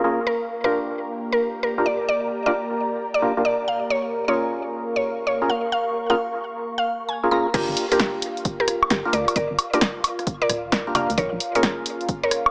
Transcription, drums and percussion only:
7.54 kick loud
7.54 closed hi-hat medium
7.54 crash loud
7.77 open hi-hat loud
7.92 closed hi-hat medium
8.00 kick loud
8.00 snare loud
8.00 closed hi-hat medium
8.22 open hi-hat loud
8.37 closed hi-hat soft
8.45 kick loud
8.45 closed hi-hat medium
8.68 cross-stick medium
8.68 open hi-hat loud
8.83 high woodblock medium
8.90 kick loud
8.90 snare loud
8.90 closed hi-hat medium
9.13 open hi-hat loud
9.28 closed hi-hat medium
9.28 high woodblock medium
9.36 kick loud
9.36 closed hi-hat medium
9.59 open hi-hat loud
9.59 high woodblock medium
9.73 closed hi-hat medium
9.81 kick loud
9.81 snare loud
9.81 closed hi-hat medium
10.04 open hi-hat loud
10.04 high woodblock medium
10.19 cross-stick soft
10.19 closed hi-hat soft
10.27 kick loud
10.27 closed hi-hat medium
10.49 cross-stick medium
10.49 open hi-hat loud
10.72 kick loud
10.72 snare loud
10.72 closed hi-hat medium
10.95 open hi-hat loud
10.95 high woodblock medium
11.10 closed hi-hat medium
11.18 kick loud
11.18 closed hi-hat medium
11.40 open hi-hat loud
11.55 closed hi-hat medium
11.63 kick loud
11.63 snare loud
11.63 closed hi-hat medium
11.86 open hi-hat loud
12.01 closed hi-hat soft
12.09 kick loud
12.09 closed hi-hat medium
12.31 cross-stick medium
12.31 open hi-hat loud
12.46 high woodblock medium

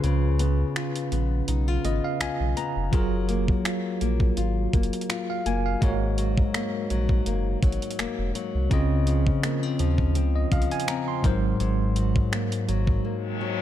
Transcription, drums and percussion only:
0.04 closed hi-hat medium
0.39 closed hi-hat medium
0.76 finger snap loud
0.76 closed hi-hat soft
0.96 closed hi-hat medium
1.12 closed hi-hat medium
1.48 closed hi-hat medium
1.85 closed hi-hat medium
2.21 finger snap loud
2.21 closed hi-hat medium
2.57 closed hi-hat medium
2.93 kick loud
2.93 closed hi-hat medium
3.29 closed hi-hat medium
3.48 kick medium
3.65 finger snap loud
3.65 closed hi-hat medium
4.01 closed hi-hat medium
4.20 kick medium
4.37 closed hi-hat medium
4.73 kick loud
4.73 closed hi-hat soft
4.83 closed hi-hat soft
4.93 closed hi-hat medium
5.01 closed hi-hat medium
5.10 finger snap loud
5.10 closed hi-hat medium
5.46 closed hi-hat medium
5.82 kick loud
5.82 closed hi-hat medium
6.18 closed hi-hat medium
6.38 kick medium
6.54 finger snap loud
6.54 closed hi-hat medium
6.90 closed hi-hat medium
7.09 kick medium
7.26 closed hi-hat medium
7.63 kick loud
7.63 closed hi-hat soft
7.72 closed hi-hat soft
7.82 closed hi-hat medium
7.91 closed hi-hat medium
7.99 finger snap loud
7.99 closed hi-hat medium
8.35 closed hi-hat medium
8.71 kick loud
8.71 closed hi-hat medium
9.07 closed hi-hat medium
9.27 kick medium
9.43 finger snap loud
9.43 closed hi-hat medium
9.79 closed hi-hat medium
9.98 kick medium
10.15 closed hi-hat medium
10.52 kick loud
10.52 closed hi-hat soft
10.62 closed hi-hat soft
10.71 closed hi-hat medium
10.80 closed hi-hat medium
10.88 finger snap loud
10.88 closed hi-hat medium
11.24 kick loud
11.24 closed hi-hat medium
11.60 closed hi-hat medium
11.96 closed hi-hat medium
12.16 kick medium
12.33 finger snap loud
12.33 closed hi-hat soft
12.52 closed hi-hat medium
12.69 closed hi-hat medium
12.87 kick medium

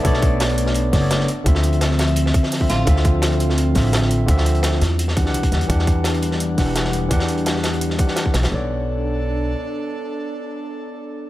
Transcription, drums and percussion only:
0.05 kick loud
0.05 closed hi-hat medium
0.13 snare soft
0.22 kick loud
0.22 closed hi-hat medium
0.40 snare loud
0.40 closed hi-hat medium
0.49 closed hi-hat soft
0.58 closed hi-hat medium
0.66 snare soft
0.74 closed hi-hat medium
0.93 kick medium
0.93 snare soft
0.93 closed hi-hat medium
0.93 open hi-hat medium
1.11 snare loud
1.11 closed hi-hat medium
1.20 snare soft
1.28 closed hi-hat medium
1.46 kick loud
1.46 closed hi-hat medium
1.55 snare soft
1.63 closed hi-hat medium
1.73 closed hi-hat soft
1.81 snare loud
1.81 closed hi-hat medium
1.91 snare soft
1.99 snare medium
1.99 closed hi-hat medium
2.07 closed hi-hat soft
2.16 closed hi-hat medium
2.26 snare soft
2.34 kick loud
2.34 closed hi-hat medium
2.43 snare soft
2.52 snare soft
2.52 closed hi-hat medium
2.52 open hi-hat medium
2.61 kick medium
2.70 snare soft
2.70 closed hi-hat medium
2.87 kick loud
2.87 closed hi-hat medium
2.96 snare soft
3.05 kick loud
3.05 closed hi-hat medium
3.22 snare loud
3.22 closed hi-hat medium
3.32 closed hi-hat soft
3.40 closed hi-hat medium
3.50 snare soft
3.58 closed hi-hat medium
3.75 kick medium
3.75 snare soft
3.75 closed hi-hat medium
3.75 open hi-hat medium
3.93 snare loud
3.93 closed hi-hat medium
4.02 snare soft
4.11 closed hi-hat medium
4.28 kick loud
4.28 closed hi-hat medium
4.38 snare medium
4.46 closed hi-hat medium
4.55 closed hi-hat soft
4.63 snare loud
4.63 closed hi-hat medium
4.72 snare soft
4.82 snare medium
4.82 closed hi-hat medium
4.99 closed hi-hat medium
5.08 snare soft
5.17 kick loud
5.17 closed hi-hat medium
5.26 snare soft
5.34 closed hi-hat medium
5.43 kick medium
5.43 closed hi-hat medium
5.52 snare soft
5.52 closed hi-hat medium
5.61 closed hi-hat medium
5.70 kick loud
5.70 closed hi-hat medium
5.79 snare soft
5.87 kick medium
5.87 closed hi-hat medium
6.04 snare loud
6.04 closed hi-hat medium
6.14 closed hi-hat soft
6.22 closed hi-hat medium
6.32 snare soft
6.40 closed hi-hat medium
6.58 kick medium
6.58 snare soft
6.58 closed hi-hat medium
6.58 open hi-hat medium
6.76 snare loud
6.76 closed hi-hat medium
6.85 snare soft
6.93 closed hi-hat medium
7.11 kick loud
7.11 closed hi-hat medium
7.20 snare soft
7.28 closed hi-hat medium
7.38 closed hi-hat soft
7.46 snare loud
7.46 closed hi-hat medium
7.56 snare soft
7.63 snare loud
7.63 closed hi-hat medium
7.73 closed hi-hat soft
7.81 closed hi-hat medium
7.90 snare soft
7.99 kick loud
7.99 closed hi-hat medium
8.08 snare soft
8.16 snare loud
8.16 closed hi-hat medium
8.26 kick medium
8.34 snare loud
8.34 closed hi-hat medium
8.43 snare loud
8.43 closed hi-hat medium

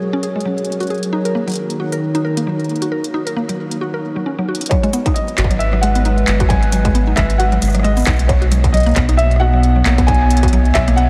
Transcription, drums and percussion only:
0.23 closed hi-hat medium
0.40 closed hi-hat soft
0.58 closed hi-hat soft
0.65 closed hi-hat soft
0.72 closed hi-hat soft
0.80 closed hi-hat soft
0.83 closed hi-hat soft
0.87 closed hi-hat soft
0.90 closed hi-hat soft
0.94 closed hi-hat soft
0.98 closed hi-hat soft
1.03 closed hi-hat medium
1.25 closed hi-hat soft
1.48 closed hi-hat soft
1.50 closed hi-hat soft
1.52 closed hi-hat soft
1.53 closed hi-hat soft
1.55 closed hi-hat soft
1.70 closed hi-hat soft
1.92 closed hi-hat medium
2.15 closed hi-hat soft
2.37 closed hi-hat medium
2.60 closed hi-hat soft
2.64 closed hi-hat soft
2.69 closed hi-hat soft
2.76 closed hi-hat soft
2.82 closed hi-hat medium
3.04 closed hi-hat soft
3.27 closed hi-hat medium
3.49 closed hi-hat soft
3.71 closed hi-hat medium
4.55 closed hi-hat medium
4.61 closed hi-hat medium
4.66 closed hi-hat medium
4.71 kick loud
4.71 closed hi-hat medium
4.83 closed hi-hat soft
4.93 closed hi-hat medium
4.93 shaker medium
5.06 kick loud
5.06 closed hi-hat medium
5.16 closed hi-hat medium
5.28 closed hi-hat soft
5.38 clap loud
5.38 closed hi-hat medium
5.44 kick loud
5.51 cross-stick medium
5.51 closed hi-hat medium
5.60 closed hi-hat medium
5.73 cross-stick medium
5.83 closed hi-hat medium
5.95 closed hi-hat medium
6.05 closed hi-hat medium
6.18 closed hi-hat soft
6.28 clap loud
6.28 closed hi-hat medium
6.40 kick loud
6.40 closed hi-hat medium
6.50 kick loud
6.50 closed hi-hat medium
6.63 closed hi-hat soft
6.72 closed hi-hat loud
6.72 shaker medium
6.85 kick loud
6.85 closed hi-hat medium
6.95 closed hi-hat medium
7.17 kick loud
7.17 clap loud
7.17 closed hi-hat loud
7.30 closed hi-hat medium
7.40 closed hi-hat medium
7.52 closed hi-hat soft
7.62 cross-stick soft
7.62 closed hi-hat medium
7.62 shaker medium
7.64 shaker medium
7.67 cross-stick soft
7.67 shaker soft
7.70 shaker soft
7.72 cross-stick soft
7.72 closed hi-hat medium
7.72 shaker soft
7.79 cross-stick soft
7.84 closed hi-hat medium
7.97 closed hi-hat soft
7.97 shaker medium
7.99 shaker medium
8.02 shaker soft
8.04 kick loud
8.04 clap loud
8.04 closed hi-hat loud
8.04 shaker soft
8.13 shaker soft
8.16 closed hi-hat medium
8.16 shaker soft
8.29 kick loud
8.29 closed hi-hat medium
8.42 closed hi-hat soft
8.52 closed hi-hat medium
8.52 shaker medium
8.64 kick loud
8.64 closed hi-hat medium
8.74 closed hi-hat medium
8.77 closed hi-hat soft
8.83 closed hi-hat soft
8.86 closed hi-hat soft
8.89 closed hi-hat soft
8.91 closed hi-hat soft
8.94 clap loud
8.94 closed hi-hat soft
8.96 kick loud
8.96 closed hi-hat medium
9.09 cross-stick medium
9.09 closed hi-hat medium
9.19 closed hi-hat medium
9.31 closed hi-hat soft
9.36 cross-stick medium
9.63 closed hi-hat medium
9.86 clap loud
9.86 closed hi-hat medium
9.98 kick loud
9.98 closed hi-hat medium
10.08 kick loud
10.08 closed hi-hat medium
10.14 closed hi-hat soft
10.30 closed hi-hat medium
10.30 shaker medium
10.37 closed hi-hat medium
10.43 kick loud
10.43 closed hi-hat medium
10.48 closed hi-hat soft
10.53 closed hi-hat medium
10.65 closed hi-hat soft
10.75 kick loud
10.75 clap loud
10.75 closed hi-hat medium
10.88 cross-stick soft
10.88 closed hi-hat medium
10.98 closed hi-hat medium

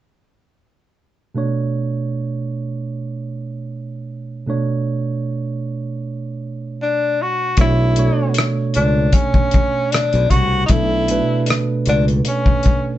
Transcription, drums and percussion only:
7.57 kick medium
7.57 closed hi-hat medium
7.96 closed hi-hat medium
8.34 closed hi-hat medium
8.38 cross-stick medium
8.74 closed hi-hat medium
9.13 kick medium
9.13 closed hi-hat medium
9.34 kick medium
9.51 kick medium
9.51 closed hi-hat medium
9.92 cross-stick medium
9.92 closed hi-hat medium
10.13 closed hi-hat soft
10.30 kick medium
10.30 closed hi-hat soft
10.68 kick loud
10.68 closed hi-hat medium
11.08 closed hi-hat medium
11.46 closed hi-hat medium
11.50 cross-stick medium
11.86 closed hi-hat medium
12.08 closed hi-hat soft
12.25 closed hi-hat medium
12.46 kick medium
12.63 kick medium
12.63 closed hi-hat medium

